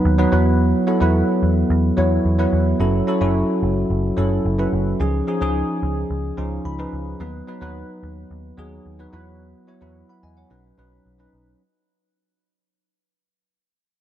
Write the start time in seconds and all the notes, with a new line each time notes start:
Already playing: F#3 B3 D#4 B4
0.05 D#2
0.18 F#3 B3 D#4 B4
0.32 E2 F#3 B3 E4 B4
0.87 F#3 B3 E4 A4
1.01 E2 F#3 B3 E4 B4
1.43 E2
1.70 E2
1.97 E2 F#3 B3 E4 C#5
2.25 E2
2.38 F#3 B3 E4 B4
2.53 E2
2.80 F#1 F#3 C#4 E4 A4
3.07 F#3 C#4 E4 A4
3.21 F#1 F#3 C#4 E4 F#4
3.63 F#1
3.90 F#1
4.17 F#1 F#3 C#4 E4 A4
4.45 F#1
4.58 F#3 C#4 E4 B4
4.73 F#1
5.00 C#2 F3 C#4 D#4 G#4
5.27 F3 C#4 D#4 G#4
5.41 C#2 F3 C#4 D#4 G#4
5.83 C#2
6.10 C#2
6.37 C#2 F3 C#4 D#4 F4
6.65 C#2 B5
6.79 F3 C#4 D#4 B4
6.93 C#2
7.20 D#2 F#3 B3 D#4 B4
7.47 F#3 B3 D#4 B4
7.61 D#2 F#3 B3 D#4 B4
8.03 D#2
8.31 D#2
8.58 D#2 F#3 B3 D#4 G#4
8.86 D#2
8.99 F#3 B3 D#4 B4
9.12 E2 F#3 B3 E4 B4
9.67 F#3 B3 E4 C#5
9.81 E2 F#3 B3 E4 B4
10.09 F#5 B5
10.23 E2 D#5 G#5
10.37 C#5 F#5
10.50 B1 F#3 C#4 D#4 B4
10.78 B1 F#3 C#4 D#4 B4
11.06 B1
11.19 F#3 C#4 D#4 B4
11.33 B1